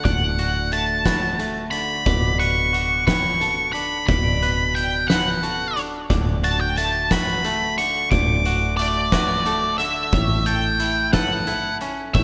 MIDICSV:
0, 0, Header, 1, 6, 480
1, 0, Start_track
1, 0, Key_signature, 2, "major"
1, 0, Tempo, 671892
1, 35, Time_signature, 6, 3, 24, 8
1, 8742, End_track
2, 0, Start_track
2, 0, Title_t, "Lead electric guitar"
2, 0, Program_c, 0, 29
2, 35, Note_on_c, 0, 78, 58
2, 518, Note_off_c, 0, 78, 0
2, 521, Note_on_c, 0, 81, 68
2, 1209, Note_off_c, 0, 81, 0
2, 1221, Note_on_c, 0, 83, 73
2, 1709, Note_off_c, 0, 83, 0
2, 1711, Note_on_c, 0, 85, 77
2, 2184, Note_off_c, 0, 85, 0
2, 2193, Note_on_c, 0, 85, 71
2, 2661, Note_off_c, 0, 85, 0
2, 2664, Note_on_c, 0, 83, 68
2, 2898, Note_off_c, 0, 83, 0
2, 2907, Note_on_c, 0, 83, 65
2, 3393, Note_on_c, 0, 79, 66
2, 3405, Note_off_c, 0, 83, 0
2, 3627, Note_off_c, 0, 79, 0
2, 3629, Note_on_c, 0, 78, 55
2, 4144, Note_off_c, 0, 78, 0
2, 4602, Note_on_c, 0, 81, 66
2, 4717, Note_off_c, 0, 81, 0
2, 4720, Note_on_c, 0, 79, 64
2, 4839, Note_off_c, 0, 79, 0
2, 4841, Note_on_c, 0, 81, 61
2, 5085, Note_off_c, 0, 81, 0
2, 5091, Note_on_c, 0, 83, 68
2, 5535, Note_off_c, 0, 83, 0
2, 5558, Note_on_c, 0, 85, 74
2, 5780, Note_off_c, 0, 85, 0
2, 5792, Note_on_c, 0, 86, 84
2, 6245, Note_off_c, 0, 86, 0
2, 6265, Note_on_c, 0, 74, 70
2, 6984, Note_off_c, 0, 74, 0
2, 6987, Note_on_c, 0, 76, 66
2, 7474, Note_on_c, 0, 79, 66
2, 7486, Note_off_c, 0, 76, 0
2, 7947, Note_off_c, 0, 79, 0
2, 7950, Note_on_c, 0, 78, 58
2, 8404, Note_off_c, 0, 78, 0
2, 8673, Note_on_c, 0, 76, 84
2, 8742, Note_off_c, 0, 76, 0
2, 8742, End_track
3, 0, Start_track
3, 0, Title_t, "Clean electric guitar"
3, 0, Program_c, 1, 27
3, 0, Note_on_c, 1, 74, 61
3, 34, Note_off_c, 1, 74, 0
3, 34, Note_on_c, 1, 74, 60
3, 757, Note_on_c, 1, 71, 56
3, 989, Note_off_c, 1, 71, 0
3, 992, Note_on_c, 1, 69, 52
3, 1472, Note_off_c, 1, 74, 0
3, 1472, Note_on_c, 1, 74, 72
3, 1473, Note_off_c, 1, 69, 0
3, 2195, Note_on_c, 1, 71, 58
3, 2434, Note_off_c, 1, 71, 0
3, 2437, Note_on_c, 1, 69, 51
3, 2916, Note_off_c, 1, 69, 0
3, 2919, Note_off_c, 1, 74, 0
3, 2919, Note_on_c, 1, 74, 69
3, 3640, Note_on_c, 1, 71, 60
3, 3874, Note_off_c, 1, 71, 0
3, 3877, Note_on_c, 1, 69, 52
3, 4356, Note_off_c, 1, 69, 0
3, 4358, Note_off_c, 1, 74, 0
3, 4358, Note_on_c, 1, 74, 61
3, 5080, Note_on_c, 1, 71, 60
3, 5318, Note_off_c, 1, 71, 0
3, 5321, Note_on_c, 1, 69, 53
3, 5798, Note_off_c, 1, 74, 0
3, 5798, Note_on_c, 1, 74, 68
3, 6277, Note_off_c, 1, 74, 0
3, 6518, Note_on_c, 1, 71, 61
3, 6539, Note_off_c, 1, 69, 0
3, 6757, Note_off_c, 1, 71, 0
3, 6761, Note_on_c, 1, 69, 60
3, 7244, Note_on_c, 1, 73, 74
3, 7955, Note_off_c, 1, 69, 0
3, 7958, Note_on_c, 1, 71, 67
3, 7979, Note_off_c, 1, 73, 0
3, 8196, Note_off_c, 1, 71, 0
3, 8199, Note_on_c, 1, 69, 57
3, 8680, Note_on_c, 1, 73, 73
3, 8742, Note_off_c, 1, 69, 0
3, 8742, Note_off_c, 1, 73, 0
3, 8742, End_track
4, 0, Start_track
4, 0, Title_t, "Clean electric guitar"
4, 0, Program_c, 2, 27
4, 0, Note_on_c, 2, 50, 46
4, 0, Note_on_c, 2, 57, 44
4, 0, Note_on_c, 2, 66, 60
4, 36, Note_on_c, 2, 38, 55
4, 276, Note_off_c, 2, 66, 0
4, 279, Note_on_c, 2, 66, 54
4, 510, Note_off_c, 2, 57, 0
4, 518, Note_on_c, 2, 57, 48
4, 752, Note_off_c, 2, 66, 0
4, 754, Note_on_c, 2, 66, 61
4, 990, Note_off_c, 2, 57, 0
4, 999, Note_on_c, 2, 57, 48
4, 1227, Note_off_c, 2, 50, 0
4, 1229, Note_on_c, 2, 50, 49
4, 1473, Note_off_c, 2, 38, 0
4, 1475, Note_on_c, 2, 47, 54
4, 1477, Note_off_c, 2, 57, 0
4, 1709, Note_off_c, 2, 66, 0
4, 1712, Note_on_c, 2, 71, 55
4, 1950, Note_on_c, 2, 66, 52
4, 2185, Note_off_c, 2, 71, 0
4, 2194, Note_on_c, 2, 71, 58
4, 2673, Note_on_c, 2, 62, 48
4, 2675, Note_off_c, 2, 47, 0
4, 2917, Note_on_c, 2, 47, 54
4, 3153, Note_off_c, 2, 71, 0
4, 3162, Note_on_c, 2, 71, 58
4, 3634, Note_off_c, 2, 71, 0
4, 3642, Note_on_c, 2, 71, 60
4, 3730, Note_off_c, 2, 50, 0
4, 3879, Note_off_c, 2, 66, 0
4, 3882, Note_on_c, 2, 66, 48
4, 4116, Note_off_c, 2, 47, 0
4, 4121, Note_off_c, 2, 62, 0
4, 4124, Note_on_c, 2, 62, 50
4, 4359, Note_off_c, 2, 71, 0
4, 4364, Note_on_c, 2, 38, 54
4, 4598, Note_off_c, 2, 66, 0
4, 4598, Note_on_c, 2, 66, 56
4, 4839, Note_off_c, 2, 62, 0
4, 4842, Note_on_c, 2, 57, 50
4, 5070, Note_off_c, 2, 66, 0
4, 5079, Note_on_c, 2, 66, 61
4, 5317, Note_off_c, 2, 57, 0
4, 5320, Note_on_c, 2, 57, 52
4, 5557, Note_on_c, 2, 50, 50
4, 5560, Note_off_c, 2, 38, 0
4, 5802, Note_on_c, 2, 38, 57
4, 6035, Note_off_c, 2, 66, 0
4, 6044, Note_on_c, 2, 66, 54
4, 6278, Note_off_c, 2, 57, 0
4, 6281, Note_on_c, 2, 57, 55
4, 6512, Note_off_c, 2, 66, 0
4, 6520, Note_on_c, 2, 66, 63
4, 6756, Note_off_c, 2, 50, 0
4, 6756, Note_off_c, 2, 57, 0
4, 6759, Note_on_c, 2, 57, 50
4, 6995, Note_on_c, 2, 50, 51
4, 6999, Note_off_c, 2, 38, 0
4, 7235, Note_off_c, 2, 50, 0
4, 7235, Note_on_c, 2, 45, 60
4, 7238, Note_off_c, 2, 66, 0
4, 7479, Note_on_c, 2, 69, 57
4, 7714, Note_on_c, 2, 64, 59
4, 7953, Note_off_c, 2, 69, 0
4, 7956, Note_on_c, 2, 69, 70
4, 8187, Note_off_c, 2, 64, 0
4, 8196, Note_on_c, 2, 64, 58
4, 8435, Note_off_c, 2, 45, 0
4, 8437, Note_off_c, 2, 57, 0
4, 8440, Note_on_c, 2, 61, 54
4, 8681, Note_on_c, 2, 45, 57
4, 8742, Note_off_c, 2, 45, 0
4, 8742, Note_off_c, 2, 61, 0
4, 8742, Note_off_c, 2, 64, 0
4, 8742, Note_off_c, 2, 69, 0
4, 8742, End_track
5, 0, Start_track
5, 0, Title_t, "Fingered electric bass"
5, 0, Program_c, 3, 33
5, 38, Note_on_c, 3, 26, 55
5, 1447, Note_off_c, 3, 26, 0
5, 1476, Note_on_c, 3, 26, 59
5, 2887, Note_off_c, 3, 26, 0
5, 2921, Note_on_c, 3, 26, 56
5, 4329, Note_off_c, 3, 26, 0
5, 4360, Note_on_c, 3, 26, 55
5, 5769, Note_off_c, 3, 26, 0
5, 5801, Note_on_c, 3, 26, 61
5, 7210, Note_off_c, 3, 26, 0
5, 7237, Note_on_c, 3, 33, 60
5, 8648, Note_off_c, 3, 33, 0
5, 8678, Note_on_c, 3, 33, 61
5, 8742, Note_off_c, 3, 33, 0
5, 8742, End_track
6, 0, Start_track
6, 0, Title_t, "Drums"
6, 37, Note_on_c, 9, 36, 70
6, 38, Note_on_c, 9, 42, 55
6, 109, Note_off_c, 9, 36, 0
6, 109, Note_off_c, 9, 42, 0
6, 275, Note_on_c, 9, 42, 44
6, 346, Note_off_c, 9, 42, 0
6, 514, Note_on_c, 9, 42, 44
6, 586, Note_off_c, 9, 42, 0
6, 754, Note_on_c, 9, 36, 57
6, 754, Note_on_c, 9, 38, 77
6, 754, Note_on_c, 9, 42, 58
6, 825, Note_off_c, 9, 36, 0
6, 825, Note_off_c, 9, 38, 0
6, 825, Note_off_c, 9, 42, 0
6, 997, Note_on_c, 9, 42, 47
6, 1068, Note_off_c, 9, 42, 0
6, 1233, Note_on_c, 9, 42, 46
6, 1304, Note_off_c, 9, 42, 0
6, 1472, Note_on_c, 9, 42, 58
6, 1474, Note_on_c, 9, 36, 80
6, 1544, Note_off_c, 9, 42, 0
6, 1545, Note_off_c, 9, 36, 0
6, 1718, Note_on_c, 9, 42, 45
6, 1789, Note_off_c, 9, 42, 0
6, 1959, Note_on_c, 9, 42, 46
6, 2031, Note_off_c, 9, 42, 0
6, 2197, Note_on_c, 9, 36, 54
6, 2198, Note_on_c, 9, 38, 81
6, 2198, Note_on_c, 9, 42, 58
6, 2268, Note_off_c, 9, 36, 0
6, 2270, Note_off_c, 9, 38, 0
6, 2270, Note_off_c, 9, 42, 0
6, 2438, Note_on_c, 9, 42, 41
6, 2510, Note_off_c, 9, 42, 0
6, 2676, Note_on_c, 9, 42, 42
6, 2748, Note_off_c, 9, 42, 0
6, 2919, Note_on_c, 9, 36, 81
6, 2920, Note_on_c, 9, 42, 54
6, 2990, Note_off_c, 9, 36, 0
6, 2991, Note_off_c, 9, 42, 0
6, 3162, Note_on_c, 9, 42, 42
6, 3233, Note_off_c, 9, 42, 0
6, 3403, Note_on_c, 9, 42, 45
6, 3474, Note_off_c, 9, 42, 0
6, 3642, Note_on_c, 9, 38, 83
6, 3642, Note_on_c, 9, 42, 65
6, 3714, Note_off_c, 9, 38, 0
6, 3714, Note_off_c, 9, 42, 0
6, 3880, Note_on_c, 9, 42, 42
6, 3951, Note_off_c, 9, 42, 0
6, 4121, Note_on_c, 9, 42, 43
6, 4193, Note_off_c, 9, 42, 0
6, 4358, Note_on_c, 9, 42, 56
6, 4359, Note_on_c, 9, 36, 80
6, 4430, Note_off_c, 9, 36, 0
6, 4430, Note_off_c, 9, 42, 0
6, 4598, Note_on_c, 9, 42, 49
6, 4669, Note_off_c, 9, 42, 0
6, 4838, Note_on_c, 9, 42, 54
6, 4909, Note_off_c, 9, 42, 0
6, 5079, Note_on_c, 9, 36, 58
6, 5079, Note_on_c, 9, 38, 83
6, 5079, Note_on_c, 9, 42, 67
6, 5150, Note_off_c, 9, 36, 0
6, 5150, Note_off_c, 9, 38, 0
6, 5150, Note_off_c, 9, 42, 0
6, 5318, Note_on_c, 9, 42, 43
6, 5390, Note_off_c, 9, 42, 0
6, 5561, Note_on_c, 9, 42, 50
6, 5632, Note_off_c, 9, 42, 0
6, 5798, Note_on_c, 9, 36, 82
6, 5798, Note_on_c, 9, 42, 66
6, 5869, Note_off_c, 9, 42, 0
6, 5870, Note_off_c, 9, 36, 0
6, 6039, Note_on_c, 9, 42, 49
6, 6110, Note_off_c, 9, 42, 0
6, 6279, Note_on_c, 9, 42, 53
6, 6350, Note_off_c, 9, 42, 0
6, 6517, Note_on_c, 9, 36, 62
6, 6517, Note_on_c, 9, 38, 90
6, 6517, Note_on_c, 9, 42, 62
6, 6589, Note_off_c, 9, 36, 0
6, 6589, Note_off_c, 9, 38, 0
6, 6589, Note_off_c, 9, 42, 0
6, 6756, Note_on_c, 9, 42, 45
6, 6828, Note_off_c, 9, 42, 0
6, 6998, Note_on_c, 9, 42, 46
6, 7070, Note_off_c, 9, 42, 0
6, 7234, Note_on_c, 9, 42, 61
6, 7236, Note_on_c, 9, 36, 80
6, 7305, Note_off_c, 9, 42, 0
6, 7308, Note_off_c, 9, 36, 0
6, 7473, Note_on_c, 9, 42, 43
6, 7544, Note_off_c, 9, 42, 0
6, 7713, Note_on_c, 9, 42, 48
6, 7785, Note_off_c, 9, 42, 0
6, 7952, Note_on_c, 9, 38, 91
6, 7952, Note_on_c, 9, 42, 65
6, 7956, Note_on_c, 9, 36, 67
6, 8024, Note_off_c, 9, 38, 0
6, 8024, Note_off_c, 9, 42, 0
6, 8028, Note_off_c, 9, 36, 0
6, 8193, Note_on_c, 9, 42, 44
6, 8265, Note_off_c, 9, 42, 0
6, 8435, Note_on_c, 9, 42, 43
6, 8506, Note_off_c, 9, 42, 0
6, 8679, Note_on_c, 9, 36, 80
6, 8679, Note_on_c, 9, 42, 62
6, 8742, Note_off_c, 9, 36, 0
6, 8742, Note_off_c, 9, 42, 0
6, 8742, End_track
0, 0, End_of_file